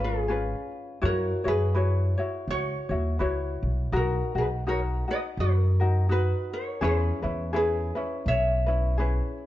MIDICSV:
0, 0, Header, 1, 4, 480
1, 0, Start_track
1, 0, Key_signature, 5, "major"
1, 0, Tempo, 722892
1, 679, Time_signature, 4, 2, 24, 8
1, 6282, End_track
2, 0, Start_track
2, 0, Title_t, "Ukulele"
2, 0, Program_c, 0, 24
2, 29, Note_on_c, 0, 68, 71
2, 32, Note_on_c, 0, 65, 56
2, 468, Note_off_c, 0, 68, 0
2, 469, Note_off_c, 0, 65, 0
2, 699, Note_on_c, 0, 70, 90
2, 703, Note_on_c, 0, 66, 64
2, 953, Note_off_c, 0, 66, 0
2, 978, Note_off_c, 0, 70, 0
2, 981, Note_on_c, 0, 68, 72
2, 982, Note_on_c, 0, 71, 84
2, 1424, Note_off_c, 0, 71, 0
2, 1425, Note_off_c, 0, 68, 0
2, 1663, Note_on_c, 0, 73, 94
2, 1668, Note_on_c, 0, 66, 74
2, 2106, Note_off_c, 0, 73, 0
2, 2108, Note_off_c, 0, 66, 0
2, 2628, Note_on_c, 0, 66, 56
2, 2633, Note_on_c, 0, 70, 67
2, 2877, Note_off_c, 0, 66, 0
2, 2878, Note_off_c, 0, 70, 0
2, 2908, Note_on_c, 0, 68, 50
2, 2911, Note_on_c, 0, 71, 57
2, 2958, Note_off_c, 0, 68, 0
2, 2959, Note_off_c, 0, 71, 0
2, 3110, Note_on_c, 0, 70, 58
2, 3113, Note_on_c, 0, 73, 81
2, 3181, Note_off_c, 0, 70, 0
2, 3184, Note_off_c, 0, 73, 0
2, 3390, Note_on_c, 0, 71, 65
2, 3393, Note_on_c, 0, 75, 74
2, 3441, Note_off_c, 0, 71, 0
2, 3441, Note_off_c, 0, 75, 0
2, 3586, Note_on_c, 0, 70, 77
2, 3591, Note_on_c, 0, 66, 64
2, 4027, Note_off_c, 0, 70, 0
2, 4029, Note_off_c, 0, 66, 0
2, 4058, Note_on_c, 0, 66, 60
2, 4064, Note_on_c, 0, 71, 72
2, 4312, Note_off_c, 0, 66, 0
2, 4338, Note_off_c, 0, 71, 0
2, 4338, Note_on_c, 0, 70, 65
2, 4340, Note_on_c, 0, 73, 67
2, 4516, Note_off_c, 0, 70, 0
2, 4535, Note_off_c, 0, 73, 0
2, 4542, Note_on_c, 0, 71, 82
2, 4547, Note_on_c, 0, 68, 61
2, 4987, Note_off_c, 0, 68, 0
2, 5013, Note_off_c, 0, 71, 0
2, 5021, Note_on_c, 0, 71, 76
2, 5026, Note_on_c, 0, 68, 63
2, 5466, Note_off_c, 0, 68, 0
2, 5495, Note_off_c, 0, 71, 0
2, 5498, Note_on_c, 0, 76, 91
2, 5504, Note_on_c, 0, 73, 71
2, 6221, Note_off_c, 0, 76, 0
2, 6224, Note_off_c, 0, 73, 0
2, 6282, End_track
3, 0, Start_track
3, 0, Title_t, "Ukulele"
3, 0, Program_c, 1, 24
3, 0, Note_on_c, 1, 65, 39
3, 0, Note_on_c, 1, 71, 47
3, 6, Note_on_c, 1, 61, 37
3, 187, Note_on_c, 1, 68, 51
3, 188, Note_off_c, 1, 61, 0
3, 190, Note_off_c, 1, 65, 0
3, 195, Note_off_c, 1, 71, 0
3, 196, Note_on_c, 1, 61, 60
3, 198, Note_on_c, 1, 65, 55
3, 204, Note_on_c, 1, 71, 63
3, 672, Note_off_c, 1, 65, 0
3, 674, Note_off_c, 1, 68, 0
3, 674, Note_on_c, 1, 64, 67
3, 675, Note_off_c, 1, 61, 0
3, 678, Note_on_c, 1, 66, 64
3, 683, Note_on_c, 1, 73, 76
3, 703, Note_off_c, 1, 71, 0
3, 949, Note_off_c, 1, 73, 0
3, 955, Note_off_c, 1, 66, 0
3, 957, Note_on_c, 1, 73, 47
3, 958, Note_off_c, 1, 64, 0
3, 963, Note_on_c, 1, 66, 49
3, 970, Note_on_c, 1, 64, 40
3, 1154, Note_off_c, 1, 64, 0
3, 1155, Note_off_c, 1, 73, 0
3, 1158, Note_on_c, 1, 71, 52
3, 1160, Note_off_c, 1, 66, 0
3, 1162, Note_on_c, 1, 64, 55
3, 1168, Note_on_c, 1, 66, 53
3, 1174, Note_on_c, 1, 73, 53
3, 1437, Note_off_c, 1, 73, 0
3, 1440, Note_off_c, 1, 71, 0
3, 1442, Note_off_c, 1, 64, 0
3, 1445, Note_off_c, 1, 66, 0
3, 1445, Note_on_c, 1, 73, 53
3, 1452, Note_on_c, 1, 66, 41
3, 1457, Note_on_c, 1, 64, 39
3, 1911, Note_off_c, 1, 73, 0
3, 1919, Note_on_c, 1, 73, 41
3, 1926, Note_off_c, 1, 66, 0
3, 1927, Note_off_c, 1, 64, 0
3, 1929, Note_on_c, 1, 66, 43
3, 1935, Note_on_c, 1, 64, 37
3, 2116, Note_off_c, 1, 73, 0
3, 2117, Note_off_c, 1, 64, 0
3, 2119, Note_on_c, 1, 71, 48
3, 2120, Note_off_c, 1, 66, 0
3, 2125, Note_on_c, 1, 64, 50
3, 2128, Note_on_c, 1, 66, 58
3, 2135, Note_on_c, 1, 73, 58
3, 2603, Note_off_c, 1, 64, 0
3, 2603, Note_off_c, 1, 66, 0
3, 2605, Note_on_c, 1, 63, 64
3, 2607, Note_off_c, 1, 71, 0
3, 2608, Note_off_c, 1, 73, 0
3, 2609, Note_on_c, 1, 70, 64
3, 2610, Note_on_c, 1, 66, 73
3, 2882, Note_off_c, 1, 66, 0
3, 2884, Note_off_c, 1, 63, 0
3, 2886, Note_off_c, 1, 70, 0
3, 2890, Note_on_c, 1, 66, 45
3, 2897, Note_on_c, 1, 63, 43
3, 3085, Note_off_c, 1, 66, 0
3, 3089, Note_off_c, 1, 63, 0
3, 3098, Note_on_c, 1, 63, 54
3, 3102, Note_on_c, 1, 66, 60
3, 3107, Note_on_c, 1, 70, 60
3, 3363, Note_off_c, 1, 66, 0
3, 3370, Note_off_c, 1, 63, 0
3, 3371, Note_on_c, 1, 66, 43
3, 3375, Note_off_c, 1, 70, 0
3, 3377, Note_on_c, 1, 63, 40
3, 3846, Note_off_c, 1, 66, 0
3, 3849, Note_off_c, 1, 63, 0
3, 3849, Note_on_c, 1, 70, 46
3, 3856, Note_on_c, 1, 66, 43
3, 3862, Note_on_c, 1, 63, 42
3, 4036, Note_off_c, 1, 63, 0
3, 4040, Note_off_c, 1, 66, 0
3, 4044, Note_on_c, 1, 63, 54
3, 4045, Note_off_c, 1, 70, 0
3, 4048, Note_on_c, 1, 66, 55
3, 4521, Note_on_c, 1, 68, 64
3, 4522, Note_off_c, 1, 63, 0
3, 4524, Note_off_c, 1, 66, 0
3, 4528, Note_on_c, 1, 64, 68
3, 4530, Note_on_c, 1, 61, 73
3, 4534, Note_on_c, 1, 71, 77
3, 4789, Note_off_c, 1, 71, 0
3, 4795, Note_off_c, 1, 64, 0
3, 4797, Note_on_c, 1, 71, 54
3, 4801, Note_off_c, 1, 61, 0
3, 4801, Note_off_c, 1, 68, 0
3, 4803, Note_on_c, 1, 64, 46
3, 4808, Note_on_c, 1, 61, 42
3, 4992, Note_off_c, 1, 61, 0
3, 4998, Note_off_c, 1, 71, 0
3, 4999, Note_on_c, 1, 68, 57
3, 5000, Note_on_c, 1, 61, 58
3, 5001, Note_off_c, 1, 64, 0
3, 5008, Note_on_c, 1, 64, 54
3, 5009, Note_on_c, 1, 71, 53
3, 5273, Note_off_c, 1, 71, 0
3, 5279, Note_off_c, 1, 64, 0
3, 5279, Note_off_c, 1, 68, 0
3, 5280, Note_off_c, 1, 61, 0
3, 5281, Note_on_c, 1, 71, 52
3, 5287, Note_on_c, 1, 64, 46
3, 5292, Note_on_c, 1, 61, 42
3, 5745, Note_off_c, 1, 71, 0
3, 5753, Note_on_c, 1, 71, 50
3, 5760, Note_off_c, 1, 64, 0
3, 5763, Note_on_c, 1, 64, 46
3, 5765, Note_off_c, 1, 61, 0
3, 5768, Note_on_c, 1, 61, 38
3, 5955, Note_off_c, 1, 71, 0
3, 5960, Note_off_c, 1, 64, 0
3, 5960, Note_on_c, 1, 68, 50
3, 5961, Note_off_c, 1, 61, 0
3, 5969, Note_on_c, 1, 61, 56
3, 5974, Note_on_c, 1, 64, 51
3, 5975, Note_on_c, 1, 71, 68
3, 6282, Note_off_c, 1, 61, 0
3, 6282, Note_off_c, 1, 64, 0
3, 6282, Note_off_c, 1, 68, 0
3, 6282, Note_off_c, 1, 71, 0
3, 6282, End_track
4, 0, Start_track
4, 0, Title_t, "Upright bass"
4, 0, Program_c, 2, 32
4, 0, Note_on_c, 2, 32, 87
4, 344, Note_off_c, 2, 32, 0
4, 684, Note_on_c, 2, 42, 84
4, 865, Note_off_c, 2, 42, 0
4, 964, Note_on_c, 2, 42, 70
4, 1405, Note_off_c, 2, 42, 0
4, 1644, Note_on_c, 2, 37, 76
4, 1825, Note_off_c, 2, 37, 0
4, 1921, Note_on_c, 2, 39, 76
4, 2101, Note_off_c, 2, 39, 0
4, 2125, Note_on_c, 2, 37, 70
4, 2377, Note_off_c, 2, 37, 0
4, 2408, Note_on_c, 2, 35, 75
4, 2584, Note_off_c, 2, 35, 0
4, 2606, Note_on_c, 2, 35, 91
4, 2786, Note_off_c, 2, 35, 0
4, 2888, Note_on_c, 2, 35, 73
4, 3327, Note_off_c, 2, 35, 0
4, 3567, Note_on_c, 2, 42, 80
4, 4189, Note_off_c, 2, 42, 0
4, 4524, Note_on_c, 2, 40, 84
4, 4705, Note_off_c, 2, 40, 0
4, 4804, Note_on_c, 2, 40, 74
4, 5244, Note_off_c, 2, 40, 0
4, 5483, Note_on_c, 2, 35, 83
4, 6104, Note_off_c, 2, 35, 0
4, 6282, End_track
0, 0, End_of_file